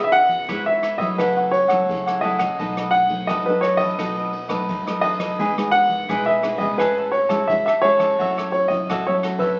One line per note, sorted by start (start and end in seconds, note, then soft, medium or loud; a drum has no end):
0.00 0.45 C#3 medium
0.00 0.44 B3 medium
0.00 0.44 E4 medium
0.00 0.44 G#4 medium
0.00 0.12 B4 soft
0.00 0.12 C#5 soft
0.00 0.12 E5 soft
0.00 0.13 E5 medium
0.12 0.62 F#5 loud
0.12 muted cavaquinho stroke soft
0.12 ride soft
0.29 kick medium
0.29 ride soft
0.48 1.15 G#2 medium
0.48 0.96 B3 medium
0.48 0.64 E4 medium
0.48 0.96 E4 medium
0.48 0.96 G#4 medium
0.48 0.65 B4 medium
0.48 0.65 C#5 medium
0.48 0.65 E5 medium
0.48 kick medium
0.48 cross-stick medium
0.48 ride soft
0.66 0.82 B4 soft
0.66 0.83 C#5 soft
0.66 1.02 E5 medium
0.66 0.82 E5 soft
0.82 0.99 E4 soft
0.82 0.99 B4 soft
0.82 0.99 C#5 soft
0.82 0.97 E5 medium
0.82 cross-stick medium
0.82 ride soft
0.98 1.65 F#3 medium
0.98 1.65 A3 medium
0.98 1.65 E4 medium
0.98 1.17 B4 soft
0.98 1.16 C#5 medium
0.98 1.16 D#5 medium
0.98 1.16 E5 medium
0.98 kick medium
0.98 ride soft
1.18 1.85 C#3 medium
1.18 1.34 E4 medium
1.18 1.35 A4 medium
1.18 1.54 B4 medium
1.18 1.35 C#5 medium
1.18 1.35 F#5 medium
1.18 kick medium
1.18 cross-stick medium
1.18 ride soft
1.37 1.52 A4 soft
1.37 1.52 C#5 soft
1.37 1.52 F#5 soft
1.51 2.19 C#5 medium
1.51 muted cavaquinho stroke soft
1.51 ride soft
1.68 1.82 F#3 medium
1.68 1.82 A3 medium
1.68 1.83 E4 medium
1.68 2.04 A4 medium
1.68 2.04 C#5 medium
1.68 2.03 F#5 medium
1.68 kick medium
1.68 cross-stick medium
1.68 ride soft
1.89 2.55 C#3 medium
1.89 2.18 F#3 soft
1.89 2.18 A3 soft
1.89 2.18 E4 medium
1.89 kick medium
1.89 ride soft
2.06 2.21 A4 soft
2.06 2.22 C#5 soft
2.06 2.22 F#5 soft
2.06 cross-stick medium
2.21 2.46 F#3 medium
2.21 2.46 A3 medium
2.21 2.39 E4 medium
2.21 2.46 E4 medium
2.21 2.39 A4 medium
2.21 2.39 C#5 medium
2.21 2.94 D#5 medium
2.21 2.37 F#5 medium
2.21 ride soft
2.38 2.57 A4 soft
2.38 2.57 C#5 soft
2.38 2.56 F#5 soft
2.38 kick medium
2.38 cross-stick medium
2.38 ride soft
2.59 3.25 B2 medium
2.59 3.06 F#3 soft
2.59 3.06 A3 medium
2.59 2.75 D#4 medium
2.59 3.06 D#4 medium
2.59 2.75 A4 medium
2.59 2.76 B4 medium
2.59 2.76 D#5 medium
2.59 kick medium
2.59 ride soft
2.77 2.92 A4 soft
2.77 2.92 B4 soft
2.77 2.93 D#5 soft
2.77 cross-stick medium
2.91 3.28 F#5 medium
2.91 muted cavaquinho stroke soft
2.91 ride soft
3.09 3.39 F#3 medium
3.09 3.40 A3 medium
3.09 3.40 D#4 medium
3.09 kick medium
3.09 ride soft
3.27 3.95 F#2 medium
3.27 3.45 D#4 medium
3.27 3.45 A4 medium
3.27 3.46 B4 medium
3.27 3.44 D#5 medium
3.27 3.46 D#5 medium
3.27 kick medium
3.27 cross-stick medium
3.27 ride soft
3.46 3.94 F#3 medium
3.46 3.94 A3 medium
3.46 3.94 D#4 medium
3.46 3.62 A4 soft
3.46 3.62 B4 medium
3.46 3.63 B4 soft
3.46 3.63 D#5 soft
3.61 3.79 D#4 soft
3.61 3.80 A4 soft
3.61 3.79 B4 soft
3.61 3.80 C#5 medium
3.61 3.77 D#5 soft
3.61 cross-stick medium
3.61 ride soft
3.77 3.97 A4 medium
3.77 3.97 B4 soft
3.77 5.00 D#5 medium
3.77 3.96 D#5 medium
3.77 kick medium
3.77 ride soft
3.99 4.65 B2 medium
3.99 4.32 F#3 soft
3.99 4.32 A3 medium
3.99 4.15 D#4 medium
3.99 4.32 D#4 medium
3.99 4.15 A4 medium
3.99 4.16 B4 medium
3.99 4.16 D#5 medium
3.99 kick medium
3.99 cross-stick medium
3.99 ride soft
4.17 4.32 A4 soft
4.17 4.32 B4 soft
4.17 4.32 D#5 soft
4.33 muted cavaquinho stroke soft
4.33 ride soft
4.48 4.80 F#3 medium
4.48 4.80 A3 medium
4.48 4.80 D#4 medium
4.48 4.84 A4 medium
4.48 4.84 B4 medium
4.48 4.83 D#5 medium
4.48 kick medium
4.48 cross-stick medium
4.48 ride soft
4.68 5.35 F#2 medium
4.68 kick medium
4.68 ride soft
4.87 5.34 F#3 medium
4.87 5.34 A3 medium
4.87 5.34 D#4 medium
4.87 5.02 A4 soft
4.87 5.02 B4 soft
4.87 5.03 D#5 soft
4.87 cross-stick medium
5.01 5.19 D#4 medium
5.01 5.19 A4 medium
5.01 5.19 B4 medium
5.01 5.69 D#5 medium
5.01 5.17 D#5 medium
5.01 ride soft
5.19 5.37 A4 soft
5.19 5.37 B4 soft
5.19 5.36 D#5 soft
5.19 kick medium
5.19 cross-stick medium
5.19 ride soft
5.38 6.05 E3 medium
5.38 5.49 G#3 soft
5.38 5.50 B3 medium
5.38 5.50 D#4 medium
5.38 5.55 E4 medium
5.38 5.55 G#4 medium
5.38 5.56 B4 medium
5.38 5.56 D#5 medium
5.38 kick medium
5.38 ride soft
5.57 6.04 G#3 soft
5.57 6.04 B3 medium
5.57 6.04 D#4 medium
5.57 5.72 G#4 soft
5.57 5.72 B4 soft
5.57 5.73 D#5 soft
5.57 cross-stick medium
5.71 6.22 F#5 loud
5.71 muted cavaquinho stroke soft
5.71 ride soft
5.89 kick medium
5.89 ride soft
6.09 6.76 B2 medium
6.09 6.39 G#3 medium
6.09 6.39 B3 medium
6.09 6.39 D#4 medium
6.09 6.25 E4 medium
6.09 6.25 G#4 medium
6.09 6.26 B4 medium
6.09 6.26 D#5 medium
6.09 kick medium
6.09 cross-stick medium
6.09 ride soft
6.26 6.42 G#4 soft
6.26 6.43 B4 soft
6.26 6.43 D#5 soft
6.26 6.62 E5 medium
6.42 6.54 G#3 soft
6.42 6.54 B3 soft
6.42 6.55 D#4 medium
6.42 6.59 E4 soft
6.42 6.60 G#4 soft
6.42 6.59 B4 soft
6.42 6.58 D#5 soft
6.42 cross-stick medium
6.42 ride soft
6.58 7.25 G#3 medium
6.58 7.25 C#4 medium
6.58 7.25 E4 medium
6.58 6.77 G#4 medium
6.58 6.77 B4 medium
6.58 6.76 D#5 medium
6.58 kick medium
6.58 ride soft
6.78 7.46 A2 medium
6.78 6.95 G#4 medium
6.78 7.11 B4 medium
6.78 6.95 C#5 medium
6.78 6.96 E5 medium
6.78 6.96 A5 medium
6.78 kick medium
6.78 cross-stick medium
6.78 ride soft
6.97 7.12 C#5 soft
6.97 7.13 E5 soft
6.97 7.13 A5 soft
7.12 7.49 C#5 medium
7.12 muted cavaquinho stroke soft
7.12 ride soft
7.29 7.43 G#3 medium
7.29 7.43 C#4 medium
7.29 7.43 E4 medium
7.29 7.65 C#5 soft
7.29 7.65 E5 medium
7.29 7.64 A5 medium
7.29 kick medium
7.29 cross-stick medium
7.29 ride soft
7.47 8.16 E3 medium
7.47 7.70 G#3 soft
7.47 7.70 C#4 medium
7.47 7.70 E4 medium
7.47 7.64 E5 medium
7.47 kick medium
7.47 ride soft
7.66 7.82 C#5 soft
7.66 7.84 E5 medium
7.66 7.83 E5 soft
7.66 7.83 A5 soft
7.66 cross-stick medium
7.82 8.16 G#3 soft
7.82 8.16 C#4 soft
7.82 8.17 E4 medium
7.82 8.00 G#4 medium
7.82 8.51 C#5 medium
7.82 8.00 C#5 medium
7.82 7.99 E5 medium
7.82 7.98 A5 medium
7.82 ride soft
7.99 8.18 C#5 soft
7.99 8.17 E5 soft
7.99 8.17 A5 soft
7.99 kick medium
7.99 cross-stick medium
7.99 ride soft
8.19 8.86 A2 medium
8.19 8.66 F#3 medium
8.19 8.67 C#4 medium
8.19 8.67 E4 medium
8.19 8.35 F#4 medium
8.19 8.35 A4 medium
8.19 8.36 C#5 medium
8.19 8.36 E5 medium
8.19 kick medium
8.19 ride soft
8.37 8.52 A4 soft
8.37 8.53 C#5 soft
8.37 8.53 E5 soft
8.37 cross-stick medium
8.52 8.71 C#5 medium
8.52 muted cavaquinho stroke soft
8.52 ride soft
8.68 9.00 F#3 medium
8.68 9.00 C#4 medium
8.68 9.01 E4 medium
8.68 9.06 D#5 medium
8.68 kick medium
8.68 ride soft
8.89 9.56 A2 medium
8.89 9.06 F#4 medium
8.89 9.06 A4 medium
8.89 9.06 C#5 medium
8.89 9.07 E5 medium
8.89 kick medium
8.89 cross-stick medium
8.89 ride soft
9.07 9.54 F#3 medium
9.07 9.55 C#4 medium
9.07 9.55 E4 medium
9.07 9.23 A4 soft
9.07 9.14 C#5 medium
9.07 9.24 C#5 soft
9.07 9.23 E5 soft
9.23 9.40 F#4 soft
9.23 9.40 A4 soft
9.23 9.39 C#5 soft
9.23 9.38 E5 medium
9.23 cross-stick medium
9.23 ride soft
9.39 9.58 A4 medium
9.39 9.60 B4 medium
9.39 9.57 C#5 medium
9.39 9.57 E5 medium
9.39 kick medium
9.39 ride soft